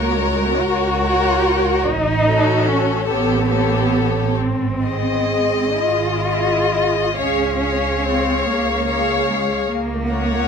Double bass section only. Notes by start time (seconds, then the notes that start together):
Already playing: C#2
0.59 C#2
1.84 A1
3.07 A1
4.38 G#1
5.82 G#1
7.18 C#2
8.46 C#2
9.68 C#2